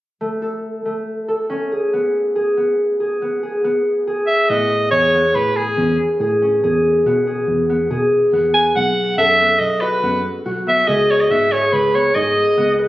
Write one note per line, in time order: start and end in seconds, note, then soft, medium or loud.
0.21 0.85 A3 medium
0.42 1.28 A4 soft
0.85 1.78 A3 soft
1.28 1.78 A4 soft
1.50 4.39 C#4 medium
1.72 2.35 G#4 soft
1.93 2.57 B3 medium
2.36 3.00 G#4 medium
2.57 3.21 B3 soft
3.00 3.43 G#4 soft
3.22 3.64 B3 medium
3.43 4.07 G#4 soft
3.64 4.50 B3 medium
4.07 4.92 G#4 medium
4.27 4.51 E5 medium
4.49 4.89 A2 medium
4.49 5.14 B3 medium
4.49 4.90 D#5 medium
4.91 5.31 E2 medium
4.91 5.57 G#4 medium
4.91 5.37 C#5 medium
5.15 7.06 B3 medium
5.35 5.74 A2 medium
5.35 5.58 B4 medium
5.56 5.99 G#4 medium
5.56 6.20 G#4 medium
5.78 5.97 E2 medium
5.78 6.42 C#4 medium
6.20 6.59 A2 medium
6.20 6.63 G#4 medium
6.42 9.32 C#4 medium
6.63 7.02 E2 medium
6.63 7.27 G#4 medium
7.06 7.45 B2 medium
7.06 7.69 B3 medium
7.27 7.90 G#4 medium
7.48 7.87 E2 medium
7.70 8.33 B3 medium
7.91 8.10 B2 medium
7.91 9.24 G#4 medium
8.33 8.72 E2 medium
8.33 8.75 B3 medium
8.54 10.59 B4 medium
8.54 8.63 G#5 medium
8.76 9.14 B1 medium
8.76 9.39 B3 medium
8.76 9.15 F#5 medium
9.18 9.57 F#2 medium
9.18 10.93 A4 medium
9.18 9.61 E5 medium
9.40 10.03 B3 medium
9.59 9.99 B1 medium
9.59 9.82 D#5 medium
9.81 10.45 F#4 medium
9.81 10.24 B4 medium
10.03 10.22 F#2 medium
10.03 10.66 B3 medium
10.45 10.84 B1 medium
10.45 12.88 F#4 medium
10.67 11.30 B3 medium
10.67 10.89 E5 medium
10.87 11.27 C#2 medium
10.87 11.51 G#4 medium
10.87 11.12 D#5 medium
11.11 11.22 C#5 medium
11.21 11.33 D#5 medium
11.30 11.69 G#2 medium
11.30 11.94 B3 medium
11.30 11.54 E5 medium
11.52 12.15 G#4 medium
11.52 11.75 C#5 medium
11.73 12.12 C#2 medium
11.73 11.96 B4 medium
11.94 12.57 B3 medium
11.94 12.17 C#5 medium
12.15 12.35 G#2 medium
12.15 12.88 G#4 medium
12.15 12.79 D#5 medium
12.58 12.88 C#2 medium
12.58 12.88 B3 medium
12.79 12.88 B4 medium